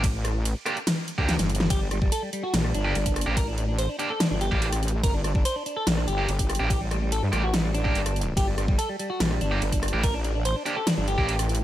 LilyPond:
<<
  \new Staff \with { instrumentName = "Clean electric guitar" } { \time 4/4 \key g \minor \tempo 4 = 144 r1 | g'16 g16 g16 g16 a'16 g16 g16 fis'16 g16 g16 d'4~ d'16 r16 | bes'16 d'16 d'16 d'16 c''16 d'16 d'16 a'16 d'16 d'16 g'4~ g'16 r16 | bes'16 d'16 d'16 d'16 c''16 d'16 d'16 a'16 d'16 d'16 g'4~ g'16 r16 |
g'16 g16 g16 g16 a'16 g16 g16 fis'16 g16 g16 d'4~ d'16 r16 | g'16 g16 g16 g16 a'16 g16 g16 fis'16 g16 g16 d'4~ d'16 r16 | bes'16 d'16 d'16 d'16 c''16 d'16 d'16 a'16 d'16 d'16 g'4~ g'16 r16 | }
  \new Staff \with { instrumentName = "Distorted electric guitar" } { \time 4/4 \key g \minor r4. <bes d' g'>16 r4 <bes d' g'>16 r4 | r2 r8. <bes d' g'>16 r8. <bes d' g'>16 | r4. <bes d' g'>16 r4 <bes d' g'>16 r4 | r2 r8. <bes d' g'>16 r8. <bes d' g'>16 |
r4. <bes d' g'>16 r4 <bes d' g'>16 r4 | r2 r8. <bes d' g'>16 r8. <bes d' g'>16 | r4. <bes d' g'>16 r4 <bes d' g'>16 r4 | }
  \new Staff \with { instrumentName = "Wobble bass" } { \clef bass \time 4/4 \key g \minor a,,4~ a,,16 r4. d,8 g,,8. | g,,4 r4 bes,,8 g,,8 g,,8. a,,16~ | a,,4~ a,,16 r4 g,,8 a,,4~ a,,16 | g,,4 r4 bes,,8 g,,8 g,,8. a,,16~ |
a,,4~ a,,16 g,16 a,,4. g,,4 | g,,4 r4 bes,,8 g,,8 g,,8. a,,16~ | a,,4~ a,,16 r4 g,,8 a,,4~ a,,16 | }
  \new DrumStaff \with { instrumentName = "Drums" } \drummode { \time 4/4 <hh bd cymr>8 <hh ss>8 <hh cymr>8 <hh ss>16 hh16 <hh cymr sn>8 hh16 bd16 <hh cymr sn>16 <hh sn>16 hh32 hh32 sn16 | <hh bd cymr>8 <hh ss>16 bd16 <hh cymr>8 hh8 <hh cymr sn>16 ss16 hh8 <hh cymr>16 <hh bd>16 <hh ss>32 hh16. | <hh bd cymr>8 hh8 <hh cymr>8 hh8 <hh cymr sn>8 hh16 bd16 <hh cymr>16 <hh ss>16 hh32 hh16. | <hh bd cymr>8 <hh ss>16 bd16 <hh cymr>8 hh8 <hh cymr sn>16 ss16 hh8 <hh cymr>16 <hh bd>16 <hh ss>32 hh16. |
<hh bd cymr>8 <hh ss>8 <hh cymr>8 <hh ss>8 <hh cymr sn>8 hh16 bd16 <hh cymr>16 <hh ss>16 hh32 hh16. | <hh bd cymr>8 <hh ss>16 bd16 <hh cymr>8 hh8 <hh cymr sn>16 ss16 hh8 <hh cymr>16 <hh bd>16 <hh ss>32 hh16. | <hh bd cymr>8 hh8 <hh cymr>8 hh8 <hh cymr sn>8 hh16 bd16 <hh cymr>16 <hh ss>16 hh32 hh16. | }
>>